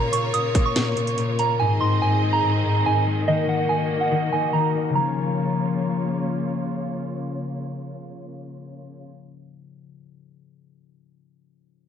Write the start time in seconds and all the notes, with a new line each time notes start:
Already playing: A#2 C#3 A#3 F4 C#5 A#5
0.13 A#2 C#6, closed hi-hat
0.34 A#2 D#6, closed hi-hat
0.55 A#3, kick, closed hi-hat
0.66 C#6
0.76 A#2, snare, closed hi-hat
0.97 A#2, closed hi-hat
1.07 closed hi-hat
1.18 A#2, closed hi-hat
1.39 A#3 A#5, closed hi-hat
1.59 G#2 D#3 C4 G#4 D#5 G#5
1.81 G#2 C6
2.02 G#2 G#5
2.23 G#3
2.33 A#5
2.44 G#2
2.65 G#2
2.86 G#2 G#5
3.07 G#3
3.27 D#3 A#3 F#4 D#5
3.48 D#3 F#5
3.69 D#3 G#5
3.90 A#3
4.01 F#5
4.11 D#3
4.32 D#3 G#5
4.53 D#3 A#5
4.74 A#3
4.89 C#3 F3
4.95 C#3 A#3 F4 C#5 A#5
5.01 C#4